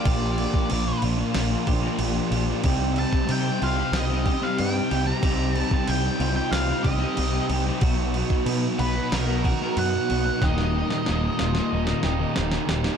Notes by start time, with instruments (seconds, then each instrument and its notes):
Already playing: lead electric guitar D5
0.04 picked electric bass A#1, overdriven electric guitar A#2 F3 A#3 D4 F4, clean electric guitar G4, kick, crash
0.38 overdriven electric guitar F3 A#3 D4 F4, crash
0.52 distorted electric guitar F3 A#3, kick
0.70 picked electric bass A#1, overdriven electric guitar A#2 F3 A#3 D4 F4, crash
1.02 picked electric bass A#1, distorted electric guitar A#2, overdriven electric guitar F3 A#3 D4 F4, crash
1.18 overdriven electric guitar A#3 D4 F4, muted distorted electric guitar stroke
1.34 picked electric bass A#1, overdriven electric guitar F3 A#3 D4 F4, snare, crash
1.51 distorted electric guitar F3, overdriven electric guitar A#3 D4 F4
1.66 picked electric bass A#1, overdriven electric guitar F3 A#3 D4, clean electric guitar G4, muted distorted electric guitar stroke, kick, crash
1.70 overdriven electric guitar F4
1.82 distorted electric guitar F3 A#3, overdriven electric guitar F4
1.87 overdriven electric guitar A#3 D4
1.97 picked electric bass A#1, distorted electric guitar A#2, crash
2.01 overdriven electric guitar A#2 F3 A#3 D4 F4
2.31 picked electric bass A#1, distorted electric guitar A#2, overdriven electric guitar F3 A#3, clean electric guitar G4, snare, crash
2.36 overdriven electric guitar D4 F4
2.47 distorted electric guitar F3 A#3
2.51 overdriven electric guitar A#3 D4 F4
2.62 picked electric bass C2, distorted electric guitar C3 G3, kick, crash
2.67 overdriven electric guitar C3 G3 C4 D#4 G4
2.96 overdriven electric guitar G3, lead electric guitar A5, crash
3.01 overdriven electric guitar C4 D#4 G4
3.11 distorted electric guitar G3 C4, kick
3.26 distorted electric guitar C3, picked electric bass C3, crash
3.31 overdriven electric guitar C3 G3 C4 D#4 G4, lead electric guitar G5
3.60 picked electric bass C2, distorted electric guitar C3, overdriven electric guitar G3 C4, clean electric guitar F4, lead electric guitar F5, crash
3.64 overdriven electric guitar D#4 G4
3.78 overdriven electric guitar D#4 G4, muted distorted electric guitar stroke
3.82 overdriven electric guitar C4
3.92 picked electric bass C2, overdriven electric guitar G3, snare, crash
3.96 overdriven electric guitar C4 D#4 G4, lead electric guitar D#5
4.11 distorted electric guitar G3, overdriven electric guitar C4 D#4 G4
4.26 overdriven electric guitar G3 C4, muted distorted electric guitar stroke, kick, crash
4.30 overdriven electric guitar D#4 G4
4.43 distorted electric guitar G3, overdriven electric guitar C4 D#4 G4, lead electric guitar F5
4.58 picked electric bass G2, overdriven electric guitar C3 G3 C4 D#4 G4, lead electric guitar G5, crash
4.90 picked electric bass C2, distorted electric guitar C3, overdriven electric guitar G3 C4 D#4 G4, crash
5.07 distorted electric guitar G3, overdriven electric guitar C4 D#4 G4, lead electric guitar A#5
5.23 picked electric bass C2, overdriven electric guitar C3 G3 C4 D#4 G4, kick, crash
5.55 overdriven electric guitar G3 C4 D#4, lead electric guitar A5, crash
5.59 overdriven electric guitar G4
5.71 distorted electric guitar G3 C4, lead electric guitar A5, kick
5.88 picked electric bass C2, overdriven electric guitar C3 G3 C4 D#4 G4, lead electric guitar G5, crash
6.19 picked electric bass C2, distorted electric guitar C3, overdriven electric guitar G3 C4 D#4, clean electric guitar F4, crash
6.24 overdriven electric guitar G4
6.36 overdriven electric guitar D#4 G4, lead electric guitar G5, muted distorted electric guitar stroke
6.40 overdriven electric guitar C4
6.51 picked electric bass C2, overdriven electric guitar G3, lead electric guitar F5, snare, crash
6.55 overdriven electric guitar C4 D#4 G4
6.67 distorted electric guitar G3 C4, overdriven electric guitar D#4 G4
6.72 overdriven electric guitar C4
6.84 picked electric bass C2, overdriven electric guitar G3 C4 D#4 G4, lead electric guitar D#5, muted distorted electric guitar stroke, kick, crash
6.98 distorted electric guitar G3 C4, overdriven electric guitar G4
7.04 overdriven electric guitar C4 D#4
7.17 picked electric bass C2, overdriven electric guitar C3 G3 C4 D#4 G4, crash
7.49 picked electric bass C2, distorted electric guitar C3, overdriven electric guitar G3 C4, crash
7.53 overdriven electric guitar D#4 G4
7.67 distorted electric guitar G3, overdriven electric guitar C4 D#4 G4
7.81 picked electric bass B1, overdriven electric guitar B2 F#3 B3 D#4 F#4, kick, crash
8.14 overdriven electric guitar F#3 B3 D#4, crash
8.18 overdriven electric guitar F#4
8.29 distorted electric guitar F#3 B3, kick
8.46 picked electric bass B2, overdriven electric guitar B2 F#3 B3 D#4 F#4, crash
8.79 picked electric bass B1, distorted electric guitar B2, overdriven electric guitar F#3 B3 D#4, lead electric guitar B4, crash
8.83 overdriven electric guitar F#4
8.95 overdriven electric guitar B3 D#4 F#4, muted distorted electric guitar stroke
9.11 picked electric bass B1, overdriven electric guitar F#3 B3 D#4 F#4, lead electric guitar A#4, snare, crash
9.28 distorted electric guitar F#3, overdriven electric guitar B3 D#4 F#4
9.44 overdriven electric guitar F#3 B3 D#4 F#4, muted distorted electric guitar stroke, kick, crash
9.60 distorted electric guitar F#3, overdriven electric guitar B3 D#4 F#4
9.77 picked electric bass F#2, overdriven electric guitar B2 F#3 B3 D#4 F#4, lead electric guitar F#5, crash
10.09 picked electric bass B1, distorted electric guitar B2, overdriven electric guitar F#3 B3 D#4 F#4, crash
10.24 overdriven electric guitar B3 D#4 F#4
10.29 distorted electric guitar F#3
10.42 picked electric bass D#1, overdriven electric guitar D#2 A#2 D#3 G3 A#3 D#4, clean electric guitar G4, lead electric guitar D#5, kick, snare
10.58 snare
10.74 overdriven electric guitar D#3 G3 A#3 D#4
10.90 distorted electric guitar A#2 D#3, snare
11.06 picked electric bass D#1, overdriven electric guitar D#2 A#2 D#3 G3 A#3 D#4, snare
11.39 picked electric bass D#1, distorted electric guitar D#2 A#2, overdriven electric guitar D#3 G3 A#3, clean electric guitar F4, snare
11.43 overdriven electric guitar D#4
11.55 overdriven electric guitar D#3 G3 A#3 D#4, muted distorted electric guitar stroke, snare
11.72 picked electric bass D#1, overdriven electric guitar D#3 G3 A#3 D#4
11.87 distorted electric guitar A#2, overdriven electric guitar D#3 G3 A#3 D#4, snare
12.03 picked electric bass D#1, overdriven electric guitar D#3 G3 A#3 D#4, clean electric guitar G4, muted distorted electric guitar stroke, snare
12.20 distorted electric guitar A#2, overdriven electric guitar D#3 G3 A#3 D#4
12.36 picked electric bass D#1, overdriven electric guitar D#2 A#2 D#3 G3 A#3 D#4, snare
12.52 snare
12.66 picked electric bass D#1, distorted electric guitar D#2 A#2, overdriven electric guitar D#3 G3, clean electric guitar G4, snare
12.71 overdriven electric guitar A#3 D#4
12.84 distorted electric guitar A#2, overdriven electric guitar D#3 G3 A#3 D#4, snare